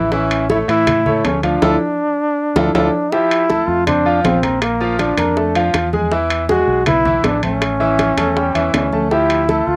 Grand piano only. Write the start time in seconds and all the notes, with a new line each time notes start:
0.12 E3 E4 E5
0.49 A3 A4 C#5
0.68 E3 E4 E5
1.06 A3 A4 C#5
1.43 F3 F4 F5
1.62 E4 F4 A4
2.56 E4 F4 A4
2.75 E4 F4 A4
3.12 F3 G4 E5
3.49 A3 A4 A5
3.87 C4 C5 C6
4.06 F3 F4 F5
4.43 A#3 A#4 A#5
4.81 F3 F4 F5
5.18 A#3 A#4 A#5
5.37 A3 A4 A5
5.55 F3 F4 F5
5.93 G#3 G#4 G#5
6.12 E3 E4 E5
6.49 G#3 G#4 G#5
6.87 B3 B4 B5
7.05 E3 E4 E5
7.43 A3 A4 A5
7.80 E3 E4 E5
8.18 A3 A4 A5
8.36 G3 G4 G5
8.55 E3 E4 E5
8.92 A3 A4 A5
9.11 F3 G4 E5
9.49 A3 A4 A5